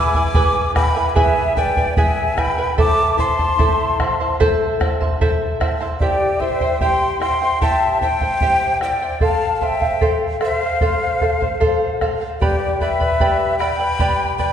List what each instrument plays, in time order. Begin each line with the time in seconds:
Already playing: charango E4 B4 E5 G#5, quena G#5 D6
0.14 charango E4 B4 G#5, bombo low
0.34 charango E4 G#4 B4 E5 G#5, bombo low
0.75 charango E4 B4 E5 G#5, quena G5 B5, bombo rim, bombo low
0.96 charango E4 B4 G#5
1.09 quena G#5 B5
1.15 charango E4 G#4 B4 E5 G#5, quena E5 G#5, bombo low
1.56 charango E4 B4 E5 G#5, quena D5 G5, bombo low
1.77 charango E4 B4 G#5, bombo low
1.97 charango E4 G#4 B4 E5 G#5, quena E5 G#5, bombo low
2.37 charango E4 B4 E5 G#5, quena G5 B5, bombo rim, bombo low
2.58 charango E4 B4 G#5
2.77 charango E4 A4 C5 E5 A5, quena A5 D6, bombo low
3.17 charango E4 C5 E5 A5, quena A5 C6, bombo low
3.39 charango E4 C5 A5, bombo low
3.58 charango E4 A4 C5 E5 A5, bombo low
4.00 charango E4 C5 E5 A5, bombo rim, bombo low
4.20 charango E4 C5 A5
4.40 charango E4 A4 C5 E5 A5, bombo low
4.80 charango E4 C5 E5 A5, bombo rim, bombo low
5.01 charango E4 C5 A5, bombo low
5.21 charango E4 A4 C5 E5 A5, bombo low
5.60 charango E4 C5 E5 A5, bombo rim, bombo low
5.81 charango E4 C5 A5
6.00 charango E4 G4 C5 E5 G5, quena G4 D5, bombo low
6.40 charango E4 C5 E5 G5, quena C5 E5, bombo low
6.61 charango E4 C5 G5, bombo low
6.80 charango E4 G4 C5 E5 G5, quena G5 C6, bombo low
7.20 charango E4 C5 E5 G5, quena G5 C6, bombo rim
7.42 charango E4 C5 G5
7.61 charango E4 G4 C5 E5 G5, quena E5 A5, bombo low
8.01 charango E4 C5 E5 G5, quena C5 G5, bombo low
8.21 charango E4 C5 G5, bombo low
8.41 charango E4 G4 C5 E5 G5, bombo low
8.81 charango E4 C5 E5 G5, quena D5 G5, bombo rim
9.02 charango E4 C5 G5
9.21 charango A4 C5 F5, quena F5 A5, bombo low
9.55 quena F5 A5
9.61 charango A4 C5 F5, quena E5 G5, bombo low
9.81 charango C5 F5, bombo low
10.01 charango A4 C5 F5, bombo low
10.40 charango A4 C5 F5, quena C5, bombo rim
10.45 quena E5
10.57 quena F5
10.61 charango C5 F5
10.81 charango A4 C5 F5, bombo low
11.21 charango A4 C5 F5, bombo low
11.41 charango C5 F5, bombo low
11.60 charango A4 C5 F5, bombo low
12.01 charango A4 C5 F5, bombo rim, bombo low
12.21 charango C5 F5
12.40 quena G4 D5, charango G4 B4 D5 G5 B5, bombo low
12.80 quena B4 E5, charango B4 D5 G5 B5, bombo low
13.00 charango B4 D5 B5, bombo low
13.20 charango G4 B4 D5 G5 B5, bombo low
13.59 charango B4 D5 G5 B5, quena G5 B5, bombo rim
13.79 charango B4 D5 B5
13.99 charango G4 B4 D5 G5 B5, bombo low
14.37 charango B4 D5 G5 B5, quena G5 B5, bombo low